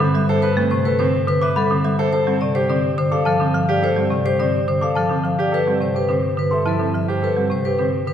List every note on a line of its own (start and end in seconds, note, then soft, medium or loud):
0.00 1.98 G2 medium
0.00 0.19 D3 loud
0.00 0.19 C4 medium
0.14 0.33 G3 medium
0.14 0.33 E5 medium
0.29 0.48 A4 medium
0.29 0.48 C5 medium
0.42 0.61 B4 medium
0.42 0.62 B4 medium
0.57 0.76 A3 medium
0.57 0.76 C4 medium
0.71 0.90 C3 medium
0.71 0.90 C5 medium
0.85 1.04 A4 medium
0.85 1.04 B4 medium
0.99 1.18 D3 medium
0.99 1.18 C4 medium
0.99 1.18 C5 medium
1.28 1.46 D3 medium
1.28 1.47 B4 medium
1.42 1.61 B4 medium
1.42 1.61 E5 medium
1.42 1.60 D6 medium
1.56 1.75 G3 medium
1.56 1.75 A4 medium
1.56 1.75 B5 medium
1.70 1.89 D3 medium
1.70 1.89 C4 medium
1.85 2.03 G3 medium
1.85 2.03 E5 medium
1.99 2.11 A4 medium
1.99 2.11 C5 medium
2.13 5.37 G2 medium
2.13 2.31 A4 medium
2.13 2.31 C5 medium
2.27 2.46 G3 medium
2.27 2.45 C4 medium
2.41 2.60 C3 medium
2.41 2.60 D5 medium
2.55 2.74 G4 medium
2.55 2.74 C5 medium
2.69 2.88 D3 medium
2.69 2.88 C4 medium
2.69 2.88 D5 medium
2.98 3.16 D3 medium
2.98 3.16 C5 medium
3.12 3.30 A4 medium
3.12 3.30 F5 medium
3.12 3.30 D6 medium
3.25 3.45 F3 medium
3.25 3.45 A4 medium
3.25 3.44 A5 medium
3.40 3.59 D3 medium
3.40 3.59 C4 medium
3.54 3.73 F3 medium
3.54 3.73 F5 medium
3.69 3.87 G4 medium
3.69 3.87 D5 medium
3.83 4.01 A4 medium
3.83 4.02 C5 medium
3.96 4.15 G3 medium
3.96 4.15 C4 medium
4.10 4.29 C3 medium
4.10 4.30 D5 medium
4.25 4.44 G4 medium
4.25 4.44 C5 medium
4.39 4.58 D3 medium
4.39 4.58 C4 medium
4.39 4.58 D5 medium
4.68 4.86 D3 medium
4.68 4.86 C5 medium
4.81 5.00 A4 medium
4.81 5.01 F5 medium
4.81 5.00 D6 medium
4.95 5.15 F3 medium
4.95 5.15 A4 medium
4.95 5.14 A5 medium
5.09 5.28 D3 medium
5.09 5.29 C4 medium
5.24 5.42 F3 medium
5.24 5.43 F5 medium
5.39 5.57 G4 medium
5.39 5.57 D5 medium
5.52 8.13 G2 medium
5.52 5.71 A4 medium
5.52 5.72 B4 medium
5.67 5.85 G3 medium
5.67 5.85 C4 medium
5.81 5.99 C3 medium
5.81 6.00 C5 medium
5.95 6.13 G4 medium
5.95 6.14 B4 medium
6.09 6.28 D3 medium
6.09 6.28 C4 medium
6.09 6.28 C5 medium
6.37 6.56 D3 medium
6.37 6.56 B4 medium
6.51 6.70 A4 medium
6.51 6.71 E5 medium
6.51 6.70 C6 medium
6.65 6.84 F3 medium
6.65 6.84 E4 medium
6.65 6.85 A4 medium
6.65 6.84 A5 medium
6.80 6.98 D3 medium
6.80 6.98 C4 soft
6.94 7.13 F3 medium
6.94 7.13 E5 medium
7.08 7.27 G4 medium
7.08 7.27 C5 medium
7.22 7.41 A4 medium
7.22 7.41 B4 medium
7.37 7.55 G3 medium
7.37 7.55 C4 soft
7.50 7.69 C3 medium
7.50 7.69 C5 medium
7.65 7.83 G4 medium
7.65 7.83 B4 medium
7.79 7.97 D3 soft
7.79 7.97 C4 medium
7.79 7.97 C5 medium
8.07 8.13 D3 medium
8.07 8.13 B4 medium